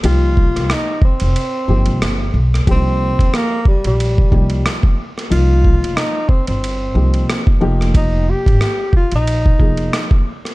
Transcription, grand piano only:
X:1
M:4/4
L:1/8
Q:"Swing 16ths" 1/4=91
K:Cm
V:1 name="Grand piano"
[F,B,EG]3 z2 [F,B,EG]2 z | [F,B,DEG]3 z2 [F,B,EG]2 z | [F,B,EF]3 z2 [F,B,EG]2 [F,B,EG]- | [F,B,EG]2 z3 [F,B,EA]2 z |]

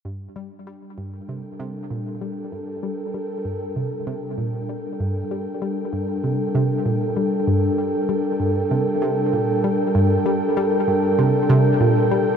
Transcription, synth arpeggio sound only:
X:1
M:4/4
L:1/8
Q:1/4=97
K:Gm
V:1 name="Synth arpeggio sound" clef=bass
G,, G, G, G,, C, C, B,, G, | G,, G, G, G,, C, C, B,, G, | G,, G, G, G,, C, C, B,, G, | G,, G, G, G,, C, C, B,, G, |
G,, G, G, G,, C, C, B,, G, |]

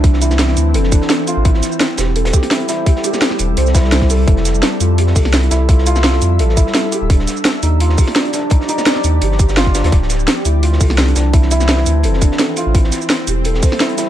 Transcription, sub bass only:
X:1
M:4/4
L:1/16
Q:"Swing 16ths" 1/4=170
K:Dm
V:1 name="Sub bass" clef=bass
C,,6 D,,2 F,,,3 z4 A,,,- | A,,,2 z4 E,,,4 z6 | z6 E,,,2 C,,4 C,,4 | F,,,4 z2 F,,4 C,,4 C,,2- |
C,,6 F,,2 A,,,3 z4 _E,,,- | _E,,,2 z4 _E,,4 z6 | z6 _E,,2 G,,,6- G,,, E,, | D,,,4 z2 D,,4 C,,4 C,,2- |
C,,6 D,,2 F,,,3 z4 A,,,- | A,,,2 z4 E,,,4 z6 |]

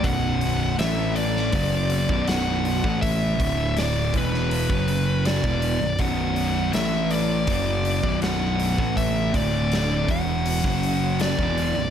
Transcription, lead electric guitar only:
X:1
M:4/4
L:1/8
Q:1/4=81
K:Bm
V:1 name="Lead electric guitar"
f2 e d3 f2 | e2 d B3 d2 | f2 e d3 f2 | e d2 f3 d2 |]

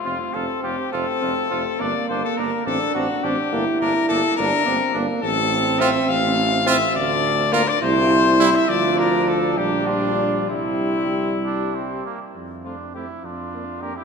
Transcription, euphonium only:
X:1
M:6/8
L:1/16
Q:3/8=69
K:F
V:1 name="Euphonium"
C12 | B,6 D6 | E6 D2 C2 B,2 | C8- C2 z2 |
D6 E6 | F6 D6 | E8- E z3 | z2 A,2 A,2 z2 B,2 B,2 |]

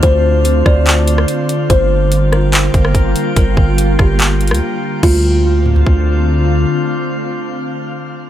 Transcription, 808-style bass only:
X:1
M:4/4
L:1/16
Q:1/4=144
K:Dm
V:1 name="808-style bass" clef=bass
D,,6 D,,6 z4 | G,,,8- G,,,2 G,,,2 G,,,2 z2 | G,,,2 G,,,4 G,,,4- G,,, D,, z4 | D,,16 |
z16 |]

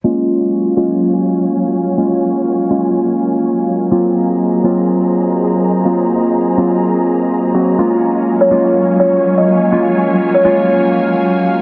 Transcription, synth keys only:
X:1
M:4/4
L:1/8
Q:"Swing 16ths" 1/4=124
K:Gblyd
V:1 name="Synth keys"
[A,B,DF]3 [A,B,DF]4- [A,B,DF] | [A,B,DF]3 [A,B,DF]4- [A,B,DF] | [G,B,CF]3 [G,B,CF]4- [G,B,CF] | [G,B,CF]3 [G,B,CF]4 [G,B,CG] |
[A,B,DF]3 [A,B,DF]4- [A,B,DF] | [A,B,DF]3 [A,B,DF]4- [A,B,DF] |]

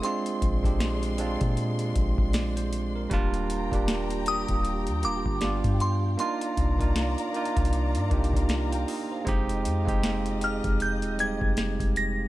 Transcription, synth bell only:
X:1
M:4/4
L:1/8
Q:"Swing 16ths" 1/4=78
K:Fdor
V:1 name="Synth bell"
c'3 z4 z | z3 e'2 d'2 c' | c'3 z4 z | z3 f' g' a'2 b' |]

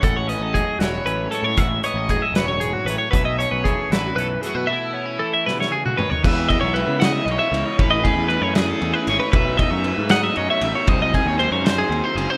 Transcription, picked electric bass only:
X:1
M:6/8
L:1/16
Q:3/8=77
K:E
V:1 name="Picked electric bass" clef=bass
A,,,3 A,,,2 z E,,,2 A,,,2 z A,, | A,,,2 z A,,,2 z E,,,4 A,,, z | B,,,3 B,,,2 z A,,,2 B,,,2 z B,, | z12 |
E,,3 B,,,2 C,3 B,,, z C,, z | A,,,3 E,,2 F,,3 E,, z G,,, z | B,,,3 F,,2 G,,3 F,, z A,,, z | ^B,,,3 D,,2 F,,3 D,, z F,,, z |]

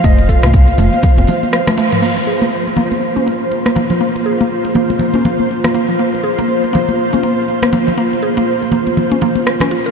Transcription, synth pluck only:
X:1
M:4/4
L:1/16
Q:"Swing 16ths" 1/4=121
K:Fphr
V:1 name="Synth pluck"
=A, z =A A, z2 A, z2 C A, z2 A, A, F, | B, z A B, z2 B, z2 D B, z2 B, B, F, | B, z A B, z2 B, z2 D B, z2 B, B, F, | B, z A B, z2 B, z2 D B, z2 B, B, F, |
B, z A B, z2 B, z2 D B, z2 D F B |]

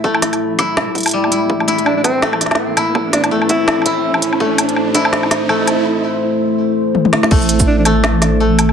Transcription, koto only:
X:1
M:4/4
L:1/8
Q:"Swing 16ths" 1/4=165
K:Am
V:1 name="Koto"
A, z2 E z2 G, E | z E z2 A, z2 E | z2 A, z2 E z2 | A, z2 E z2 A, z |
z8 | A,3 A, z2 A,2 |]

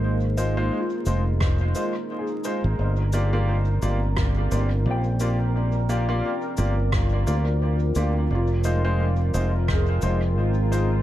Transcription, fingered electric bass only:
X:1
M:4/4
L:1/16
Q:"Swing 16ths" 1/4=87
K:Fdor
V:1 name="Fingered electric bass" clef=bass
A,,,4 z2 F,,,4 z4 z A,,, | G,,,6 G,,,4 G,,,2 B,,,4- | B,,,4 z2 G,,,4 D,,4 D,,2 | F,,,6 F,,,4 F,,,2 A,,,4 |]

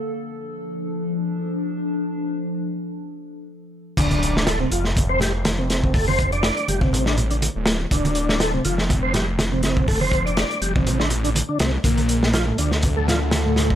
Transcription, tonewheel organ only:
X:1
M:4/4
L:1/16
Q:"Swing 16ths" 1/4=122
K:Dm
V:1 name="Tonewheel organ" clef=bass
z16 | z16 | D,4 A, C, F, z2 C G, z2 C, C,2 | A, C2 D3 G, C,2 D, z D, z4 |
D,4 A, C, F, z2 C G, z2 C, C,2 | A, C2 D3 G, C,2 D, z D, z D, C, z | B,,4 F, A,, D, z2 A, F, z2 A,, A,,2 |]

